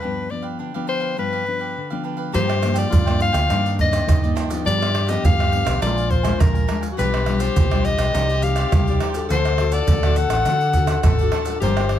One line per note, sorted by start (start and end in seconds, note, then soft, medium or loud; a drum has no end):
0.00 0.58 G2 soft
0.00 0.27 F3 soft
0.00 0.28 B3 soft
0.00 0.28 D4 soft
0.00 0.28 G4 soft
0.00 0.32 B4 medium
0.00 0.29 B4 medium
0.00 0.29 F5 medium
0.04 0.27 D4 medium
0.29 0.70 F3 soft
0.29 0.70 B3 medium
0.29 0.70 D4 medium
0.29 0.45 D5 medium
0.29 muted cavaquinho stroke soft
0.42 0.58 G4 medium
0.42 0.58 B4 medium
0.42 0.57 F5 medium
0.59 1.15 D3 medium
0.59 0.73 D4 soft
0.59 0.73 G4 soft
0.59 0.73 B4 medium
0.59 0.73 F5 soft
0.74 1.14 F3 medium
0.74 1.14 B3 medium
0.74 1.14 D4 medium
0.74 0.86 G4 medium
0.74 0.87 B4 medium
0.74 0.87 F5 medium
0.87 1.01 D4 medium
0.87 1.00 G4 medium
0.87 1.00 B4 medium
0.87 1.16 C5 loud
0.87 0.99 F5 medium
1.00 1.16 G4 medium
1.00 1.16 B4 medium
1.00 1.15 F5 medium
1.17 1.73 G2 medium
1.17 1.42 F3 medium
1.17 1.43 B3 medium
1.17 1.31 D4 soft
1.17 1.43 D4 medium
1.17 1.31 G4 medium
1.17 1.32 B4 medium
1.17 2.02 B4 loud
1.17 1.31 F5 medium
1.33 1.45 G4 medium
1.33 1.45 B4 medium
1.33 1.46 F5 medium
1.46 1.75 F3 medium
1.46 1.75 B3 medium
1.46 1.75 D4 medium
1.46 muted cavaquinho stroke soft
1.59 1.89 G4 medium
1.59 1.89 B4 medium
1.59 1.88 F5 medium
1.77 2.32 D3 medium
1.90 2.30 F3 medium
1.90 2.30 B3 medium
1.90 2.31 D4 medium
1.90 2.03 G4 medium
1.90 2.03 B4 medium
1.90 2.04 F5 medium
2.04 2.18 D4 soft
2.04 2.18 G4 medium
2.04 2.17 B4 medium
2.04 2.16 F5 medium
2.17 2.33 G4 soft
2.17 2.32 B4 medium
2.17 2.32 F5 medium
2.32 2.90 G2 medium
2.32 2.84 G2 medium
2.32 2.52 F3 medium
2.32 2.52 A#3 medium
2.32 2.52 D4 medium
2.32 2.47 F4 medium
2.32 2.88 G4 loud
2.32 2.47 A#4 medium
2.32 2.80 C5 loud
2.32 2.47 D5 medium
2.32 2.46 G5 medium
2.32 pandeiro medium
2.32 maracas medium
2.32 surdo medium
2.48 2.59 A#4 soft
2.48 2.59 D5 soft
2.48 2.59 G5 soft
2.48 pandeiro soft
2.48 tamborim medium
2.48 maracas soft
2.60 2.91 F3 medium
2.60 muted cavaquinho stroke soft
2.60 pandeiro medium
2.60 tamborim medium
2.60 maracas medium
2.64 2.91 A#3 medium
2.64 2.91 D4 medium
2.74 3.04 A#4 soft
2.74 3.04 D5 medium
2.74 3.04 G5 medium
2.74 pandeiro medium
2.74 maracas medium
2.78 3.22 D5 medium
2.90 3.29 G2 medium
2.90 3.51 F4 medium
2.90 pandeiro medium
2.90 maracas medium
2.90 surdo loud
3.06 3.47 F3 medium
3.06 3.47 A#3 medium
3.06 3.33 A#4 soft
3.06 3.32 D5 soft
3.06 3.31 G5 medium
3.06 pandeiro soft
3.06 tamborim medium
3.06 maracas soft
3.10 3.47 D4 medium
3.20 3.76 F5 loud
3.20 pandeiro medium
3.20 maracas medium
3.33 3.47 D2 medium
3.33 3.48 A#4 soft
3.33 3.48 D5 medium
3.33 3.48 G5 medium
3.33 pandeiro medium
3.33 tamborim medium
3.33 maracas medium
3.49 3.99 G2 loud
3.49 4.06 G2 medium
3.49 3.75 D#3 medium
3.49 3.75 A#3 medium
3.49 3.63 D4 medium
3.49 4.07 D4 medium
3.49 3.75 D4 medium
3.49 3.63 G4 medium
3.49 3.63 D5 medium
3.49 3.64 D#5 medium
3.49 pandeiro medium
3.49 tamborim medium
3.49 maracas medium
3.49 surdo medium
3.65 3.77 G4 soft
3.65 3.78 D5 medium
3.65 3.77 D#5 soft
3.65 pandeiro soft
3.65 maracas soft
3.78 4.06 D#3 medium
3.78 4.07 A#3 medium
3.78 4.07 D4 medium
3.78 4.34 D#5 medium
3.78 muted cavaquinho stroke soft
3.78 pandeiro medium
3.78 surdo medium
3.91 4.07 G4 soft
3.91 4.06 D5 medium
3.91 4.06 D#5 medium
3.91 pandeiro medium
3.91 tamborim medium
3.91 maracas medium
4.07 4.32 G2 medium
4.07 4.64 G2 medium
4.07 4.21 D4 soft
4.07 4.69 D#4 medium
4.07 4.22 G4 medium
4.07 4.21 D5 medium
4.07 4.22 D#5 medium
4.07 pandeiro medium
4.07 tamborim medium
4.07 maracas medium
4.07 surdo loud
4.23 4.48 D#3 medium
4.23 4.48 A#3 medium
4.23 4.48 D4 medium
4.23 4.34 G4 soft
4.23 4.35 D5 soft
4.23 4.35 D#5 soft
4.23 pandeiro soft
4.23 maracas soft
4.35 4.50 D4 medium
4.35 4.49 G4 medium
4.35 4.48 D5 medium
4.35 4.49 D#5 medium
4.35 pandeiro medium
4.35 tamborim medium
4.35 maracas medium
4.49 4.90 F3 medium
4.49 4.90 B3 medium
4.49 4.91 D4 medium
4.49 4.64 G4 soft
4.49 4.64 D5 soft
4.49 4.64 D#5 soft
4.49 pandeiro medium
4.49 maracas medium
4.65 5.15 G2 loud
4.65 5.22 G2 medium
4.65 4.79 D4 medium
4.65 4.79 G4 medium
4.65 5.85 G4 loud
4.65 4.80 B4 medium
4.65 5.11 D5 loud
4.65 4.79 F5 medium
4.65 pandeiro medium
4.65 maracas medium
4.65 surdo medium
4.81 4.93 G4 soft
4.81 4.93 B4 soft
4.81 4.93 F5 medium
4.81 pandeiro soft
4.81 tamborim medium
4.81 maracas soft
4.93 muted cavaquinho stroke soft
4.93 pandeiro medium
4.93 tamborim medium
5.07 5.48 F3 medium
5.07 5.49 B3 medium
5.07 5.49 D4 medium
5.07 5.37 G4 medium
5.07 5.37 B4 medium
5.07 5.24 D#5 medium
5.07 5.36 F5 medium
5.07 pandeiro medium
5.07 maracas medium
5.23 5.61 G2 medium
5.23 5.80 D3 medium
5.23 5.79 F5 loud
5.23 pandeiro medium
5.23 maracas medium
5.23 surdo loud
5.38 5.65 G4 soft
5.38 5.64 B4 soft
5.38 5.64 F5 soft
5.38 pandeiro soft
5.38 tamborim medium
5.38 maracas soft
5.52 5.78 F3 medium
5.52 5.78 B3 medium
5.52 5.78 D4 medium
5.52 pandeiro medium
5.65 5.79 B1 medium
5.65 5.80 G4 medium
5.65 5.80 B4 medium
5.65 5.80 F5 medium
5.65 pandeiro medium
5.65 tamborim medium
5.65 maracas medium
5.81 6.31 A#1 medium
5.81 6.38 A#2 medium
5.81 6.10 G#3 medium
5.81 5.95 D4 medium
5.81 6.10 D4 medium
5.81 6.72 F4 medium
5.81 6.10 F4 medium
5.81 5.95 A#4 medium
5.81 6.12 D5 loud
5.81 5.95 F5 medium
5.81 5.95 G#5 medium
5.81 pandeiro medium
5.81 tamborim medium
5.81 maracas medium
5.81 surdo medium
5.96 6.09 A#4 soft
5.96 6.09 F5 soft
5.96 6.10 G#5 medium
5.96 pandeiro soft
5.96 maracas soft
6.10 6.42 C5 medium
6.10 muted cavaquinho stroke soft
6.10 pandeiro medium
6.10 surdo medium
6.23 6.64 G#3 medium
6.23 6.65 D4 medium
6.23 6.65 F4 medium
6.23 6.39 A#4 soft
6.23 6.38 F5 medium
6.23 6.38 G#5 medium
6.23 pandeiro medium
6.23 tamborim medium
6.23 maracas medium
6.39 6.65 A#1 medium
6.39 6.96 F3 medium
6.39 6.53 D4 soft
6.39 6.53 A#4 soft
6.39 6.84 A#4 medium
6.39 6.54 F5 soft
6.39 6.53 G#5 medium
6.39 pandeiro medium
6.39 tamborim medium
6.39 maracas medium
6.39 surdo loud
6.54 6.67 A#4 soft
6.54 6.67 F5 soft
6.54 6.68 G#5 soft
6.54 pandeiro soft
6.54 maracas soft
6.68 6.87 G#3 medium
6.68 6.82 D4 medium
6.68 6.87 D4 medium
6.68 6.87 F4 medium
6.68 6.82 A#4 medium
6.68 6.81 F5 medium
6.68 6.80 G#5 medium
6.68 pandeiro medium
6.68 tamborim medium
6.81 6.97 A#4 soft
6.81 6.96 F5 soft
6.81 6.96 G#5 soft
6.81 pandeiro medium
6.81 maracas medium
6.91 7.01 F#4 medium
6.97 7.48 B1 medium
6.97 7.54 B2 medium
6.97 7.23 G3 soft
6.97 7.23 D4 soft
6.97 7.11 F4 medium
6.97 7.23 F4 medium
6.97 7.11 G4 medium
6.97 8.14 G4 medium
6.97 7.11 B4 medium
6.97 7.42 B4 loud
6.97 7.11 D5 medium
6.97 pandeiro medium
6.97 maracas medium
6.97 surdo medium
7.12 7.25 G4 soft
7.12 7.25 B4 soft
7.12 7.25 D5 soft
7.12 pandeiro soft
7.12 tamborim medium
7.12 maracas soft
7.26 7.55 G3 medium
7.26 7.55 D4 medium
7.26 7.55 F4 medium
7.26 muted cavaquinho stroke soft
7.26 pandeiro medium
7.26 tamborim medium
7.39 7.69 G4 medium
7.39 7.69 B4 medium
7.39 7.87 C5 medium
7.39 7.68 D5 medium
7.39 pandeiro medium
7.39 maracas medium
7.56 7.94 B1 medium
7.56 8.11 B2 medium
7.56 pandeiro medium
7.56 maracas medium
7.56 surdo loud
7.71 8.10 G3 medium
7.71 8.10 D4 medium
7.71 8.10 F4 medium
7.71 7.98 G4 soft
7.71 7.98 B4 soft
7.71 7.96 D5 medium
7.71 pandeiro soft
7.71 tamborim medium
7.71 maracas soft
7.85 8.45 D#5 loud
7.85 pandeiro medium
7.85 maracas medium
7.98 8.11 B1 medium
7.98 8.13 G4 medium
7.98 8.12 B4 medium
7.98 8.12 D5 medium
7.98 pandeiro medium
7.98 tamborim medium
7.98 maracas medium
8.14 8.64 C2 medium
8.14 8.69 C4 medium
8.14 8.27 D#4 medium
8.14 8.31 D#4 medium
8.14 9.26 G4 loud
8.14 8.28 G4 medium
8.14 8.32 G4 medium
8.14 8.28 C5 medium
8.14 8.28 D5 medium
8.14 8.32 D5 medium
8.14 pandeiro medium
8.14 tamborim medium
8.14 maracas medium
8.14 surdo medium
8.29 8.42 G4 soft
8.29 8.42 C5 soft
8.29 8.42 D5 soft
8.29 pandeiro soft
8.29 maracas soft
8.42 8.70 D#4 medium
8.42 8.70 G4 medium
8.42 8.71 D5 medium
8.42 9.01 F5 medium
8.42 muted cavaquinho stroke soft
8.42 pandeiro medium
8.42 maracas medium
8.56 8.71 G4 medium
8.56 8.71 C5 medium
8.56 8.70 D5 medium
8.56 pandeiro medium
8.56 tamborim medium
8.56 maracas medium
8.72 8.97 C2 medium
8.72 9.28 G3 medium
8.72 8.86 D#4 soft
8.72 8.86 G4 medium
8.72 8.86 C5 medium
8.72 8.87 D5 soft
8.72 pandeiro medium
8.72 tamborim medium
8.72 maracas medium
8.72 surdo loud
8.87 9.12 D#4 medium
8.87 9.12 G4 medium
8.87 9.01 G4 soft
8.87 9.01 C5 soft
8.87 9.01 D5 soft
8.87 9.12 D5 medium
8.87 pandeiro soft
8.87 maracas soft
9.00 9.14 D#4 medium
9.00 9.15 G4 medium
9.00 9.15 C5 medium
9.00 9.15 D5 medium
9.00 pandeiro medium
9.00 tamborim medium
9.14 9.54 D4 medium
9.14 9.54 F#4 medium
9.14 9.29 G4 soft
9.14 9.54 A4 medium
9.14 9.29 C5 soft
9.14 9.29 D5 medium
9.14 pandeiro medium
9.14 maracas medium
9.29 9.79 D2 medium
9.29 9.86 D3 medium
9.29 9.44 D4 medium
9.29 10.99 A4 loud
9.29 9.44 A4 medium
9.29 9.74 C5 loud
9.29 9.45 D5 medium
9.29 pandeiro medium
9.29 maracas medium
9.29 surdo medium
9.33 9.44 F#5 medium
9.45 9.58 A4 soft
9.45 9.58 D5 medium
9.45 9.58 F#5 soft
9.45 pandeiro soft
9.45 tamborim medium
9.45 maracas soft
9.58 9.98 D4 medium
9.58 9.98 F#4 medium
9.58 9.98 A4 medium
9.58 muted cavaquinho stroke soft
9.58 pandeiro medium
9.58 tamborim medium
9.72 10.01 A4 medium
9.72 10.19 D5 medium
9.72 10.01 D5 medium
9.72 10.01 F#5 medium
9.72 pandeiro medium
9.72 maracas medium
9.87 10.25 D2 medium
9.87 10.44 A2 medium
9.87 pandeiro medium
9.87 maracas medium
9.87 surdo loud
10.03 10.43 D4 medium
10.03 10.43 F#4 medium
10.03 10.30 A4 soft
10.03 10.43 A4 medium
10.03 10.29 D5 soft
10.03 10.28 F#5 soft
10.03 pandeiro soft
10.03 tamborim medium
10.03 maracas soft
10.16 11.33 F#5 loud
10.16 pandeiro medium
10.16 maracas medium
10.29 10.42 A1 medium
10.29 10.45 A4 medium
10.29 10.44 D5 medium
10.29 10.44 F#5 medium
10.29 pandeiro medium
10.29 tamborim medium
10.29 maracas medium
10.45 10.95 D3 medium
10.45 11.02 D3 medium
10.45 10.59 D4 medium
10.45 10.71 D4 medium
10.45 10.72 F#4 medium
10.45 10.60 A4 medium
10.45 10.72 A4 medium
10.45 10.60 D5 medium
10.45 10.60 F#5 medium
10.45 pandeiro medium
10.45 tamborim medium
10.45 maracas medium
10.45 surdo medium
10.60 10.75 A4 soft
10.60 10.75 D5 soft
10.60 10.74 F#5 medium
10.60 pandeiro soft
10.60 maracas soft
10.73 11.02 D4 medium
10.73 11.03 F#4 medium
10.73 11.03 A4 medium
10.73 muted cavaquinho stroke soft
10.73 pandeiro medium
10.73 maracas medium
10.73 surdo medium
10.87 11.03 A4 medium
10.87 11.02 D5 soft
10.87 11.02 F#5 medium
10.87 pandeiro medium
10.87 tamborim medium
10.87 maracas medium
11.03 11.28 G#1 medium
11.03 11.60 A2 medium
11.03 11.18 D4 soft
11.03 11.57 A4 loud
11.03 11.18 A4 medium
11.03 11.18 D5 medium
11.03 11.18 F#5 medium
11.03 pandeiro medium
11.03 tamborim medium
11.03 maracas medium
11.03 surdo loud
11.19 11.44 D4 medium
11.19 11.44 F#4 medium
11.19 11.32 A4 soft
11.19 11.44 A4 medium
11.19 11.33 D5 soft
11.19 11.33 F#5 medium
11.19 pandeiro soft
11.19 maracas soft
11.32 11.46 D4 medium
11.32 11.46 A4 medium
11.32 11.46 D5 medium
11.32 11.45 F#5 medium
11.32 pandeiro medium
11.32 tamborim medium
11.45 11.78 D4 medium
11.45 11.61 A4 soft
11.45 11.60 D5 soft
11.45 11.60 F#5 soft
11.45 pandeiro medium
11.45 maracas medium
11.49 11.79 F4 medium
11.49 11.79 A#4 medium
11.60 11.99 G1 medium
11.60 11.99 G3 soft
11.60 11.75 F4 medium
11.60 11.99 G4 medium
11.60 11.76 A#4 medium
11.60 11.99 C5 medium
11.60 11.76 D5 medium
11.60 11.76 G5 medium
11.60 pandeiro medium
11.60 maracas medium
11.60 surdo medium
11.77 11.99 D4 medium
11.77 11.99 F4 medium
11.77 11.89 A#4 soft
11.77 11.99 A#4 medium
11.77 11.90 D5 medium
11.77 11.90 G5 medium
11.77 pandeiro soft
11.77 tamborim medium
11.77 maracas soft
11.89 muted cavaquinho stroke soft
11.89 pandeiro medium
11.89 tamborim medium